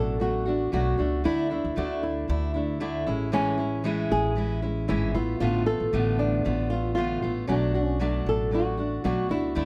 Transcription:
Already playing: upright bass A1, steel-string acoustic guitar B2 F#3 A3 D4 F#4, nylon-string guitar A4
0.20 steel-string acoustic guitar F#3 A3 D4 F#4
0.46 steel-string acoustic guitar A3 D4 F#4
0.72 upright bass B1, steel-string acoustic guitar B2 F#3 A3 D4 F#4
0.98 upright bass C#2, steel-string acoustic guitar A3 D4 F#4
1.24 upright bass D2, steel-string acoustic guitar D3 A3 D4 E4
1.50 steel-string acoustic guitar A3 D4 E4
1.65 upright bass D2
1.76 upright bass D2, steel-string acoustic guitar D3 A3 D4 E4, nylon-string guitar F#4
2.03 nylon-string guitar E4
2.28 upright bass D2, steel-string acoustic guitar D3 A3 D4 E4
2.54 steel-string acoustic guitar A3 D4 E4
2.80 steel-string acoustic guitar D3 A3 D4 E4
3.06 upright bass A1, steel-string acoustic guitar G#3 C#4 E4
3.32 steel-string acoustic guitar A2 E3 G#3 C#4 E4
3.58 steel-string acoustic guitar G#3 C#4 E4
3.84 steel-string acoustic guitar A2 E3 G#3 C#4 E4
4.11 upright bass A1, nylon-string guitar G#4
4.36 steel-string acoustic guitar E3 G#3 C#4 E4
4.62 steel-string acoustic guitar G#3 C#4 E4
4.88 upright bass G#1, steel-string acoustic guitar A2 E3 G#3 C#4 E4
5.14 upright bass A1, steel-string acoustic guitar A3 B3 F4, nylon-string guitar E4
5.40 upright bass A1, steel-string acoustic guitar A2 D3 A3 B3 F4
5.66 steel-string acoustic guitar A3 B3 F4, nylon-string guitar A4
5.80 upright bass A1
5.93 upright bass A1, steel-string acoustic guitar A2 D3 A3 B3 F4
6.19 nylon-string guitar D4
6.44 upright bass A1, steel-string acoustic guitar D3 A3 B3 F4
6.71 steel-string acoustic guitar A3 B3 F4
6.96 steel-string acoustic guitar A2 D3 A3 B3 F4
7.22 upright bass A1, steel-string acoustic guitar A3 B3 F4
7.47 upright bass B1, steel-string acoustic guitar B2 F#3 A3 D4 F#4
7.74 steel-string acoustic guitar A3 D4 F#4
7.84 nylon-string guitar C#4
8.00 steel-string acoustic guitar B2 F#3 A3 D4 F#4
8.26 upright bass A1, nylon-string guitar A4
8.51 steel-string acoustic guitar F#3 A3 D4 F#4
8.77 steel-string acoustic guitar A3 D4 F#4
9.04 upright bass B1, steel-string acoustic guitar B2 F#3 A3 D4 F#4
9.29 upright bass C#2, steel-string acoustic guitar A3 D4 F#4, nylon-string guitar E4
9.55 upright bass D2, steel-string acoustic guitar D3 A3 D4 E4

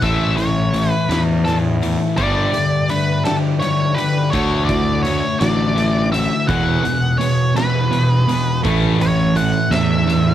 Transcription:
0.01 fingered electric bass A1, distorted electric guitar A2 E3 A3, steel-string acoustic guitar E3 A3 C#4 E4, lead electric guitar E5, kick, closed hi-hat
0.36 distorted electric guitar A2 E3, steel-string acoustic guitar E3 A3 C#4 E4, lead electric guitar C#5, closed hi-hat
0.73 distorted electric guitar A2 E3, steel-string acoustic guitar E3 A3 C#4 E4, closed hi-hat
0.92 lead electric guitar B4
1.09 fingered electric bass E2, distorted electric guitar A2 E3, steel-string acoustic guitar E3 A3 C#4 E4, lead electric guitar B4, snare, closed hi-hat
1.45 distorted electric guitar A2 E3, steel-string acoustic guitar E3 A3 C#4 E4, lead electric guitar A4, closed hi-hat
1.81 distorted electric guitar A2 E3, steel-string acoustic guitar E3 A3 C#4 E4, closed hi-hat
2.17 fingered electric bass G1, distorted electric guitar G2 D3 G3, steel-string acoustic guitar G3 A3 D4 G4, lead electric guitar D5, kick, closed hi-hat
2.53 distorted electric guitar G2 D3, steel-string acoustic guitar G3 A3 D4 G4, closed hi-hat
2.88 distorted electric guitar G2 D3, steel-string acoustic guitar G3 A3 D4 G4, lead electric guitar B4, closed hi-hat
3.25 distorted electric guitar G2 D3, steel-string acoustic guitar G3 A3 D4 G4, lead electric guitar A4, snare, closed hi-hat
3.60 distorted electric guitar G2 D3, steel-string acoustic guitar G3 A3 D4 G4, lead electric guitar C#5, closed hi-hat
3.94 distorted electric guitar G2 D3, steel-string acoustic guitar G3 A3 D4 G4, lead electric guitar B4, closed hi-hat
4.30 fingered electric bass D2, steel-string acoustic guitar D3 A3 E4 F#4, distorted electric guitar D3 A3 D4, lead electric guitar C#5, kick, closed hi-hat
4.65 steel-string acoustic guitar F#4, lead electric guitar D5
4.69 steel-string acoustic guitar D3 A3 E4, distorted electric guitar D3 A3, kick, closed hi-hat
5.03 steel-string acoustic guitar D3 A3 E4 F#4, distorted electric guitar D3, lead electric guitar C#5, closed hi-hat
5.07 distorted electric guitar A3
5.39 fingered electric bass A1, distorted electric guitar D3 A3, steel-string acoustic guitar D3 A3 E4 F#4, lead electric guitar D5, snare, closed hi-hat
5.76 distorted electric guitar D3 A3, steel-string acoustic guitar D3 A3 E4 F#4, closed hi-hat
6.12 distorted electric guitar D3 A3, steel-string acoustic guitar D3 A3 E4 F#4, lead electric guitar E5, closed hi-hat
6.47 distorted electric guitar E2 B2 E3, fingered electric bass E2, steel-string acoustic guitar F#3 G#3 B3 G#4, lead electric guitar F#5, kick, closed hi-hat
6.85 distorted electric guitar E2 B2, steel-string acoustic guitar F#3 G#3 B3 G#4, closed hi-hat
7.18 distorted electric guitar E2 B2, steel-string acoustic guitar F#3 G#3 B3 G#4, lead electric guitar C#5, closed hi-hat
7.56 distorted electric guitar E2 B2, steel-string acoustic guitar F#3 G#3 B3 G#4, lead electric guitar B4, snare, closed hi-hat
7.92 distorted electric guitar E2 B2, steel-string acoustic guitar F#3 G#3 B3 G#4, closed hi-hat
8.28 distorted electric guitar E2 B2, steel-string acoustic guitar F#3 G#3 B3 G#4, closed hi-hat
8.64 fingered electric bass A1, distorted electric guitar A2 E3 A3, steel-string acoustic guitar E3 A3 C#4 A4, kick, closed hi-hat
9.00 distorted electric guitar A2 E3, steel-string acoustic guitar E3 A3 C#4 A4, lead electric guitar C#5, closed hi-hat
9.35 distorted electric guitar A2 E3, steel-string acoustic guitar E3 A3 C#4 A4, lead electric guitar F#5, closed hi-hat
9.70 fingered electric bass E2, distorted electric guitar A2 E3, steel-string acoustic guitar E3 A3 C#4 A4, lead electric guitar E5, snare, closed hi-hat
10.06 distorted electric guitar A2 E3, steel-string acoustic guitar E3 A3 C#4 A4, closed hi-hat

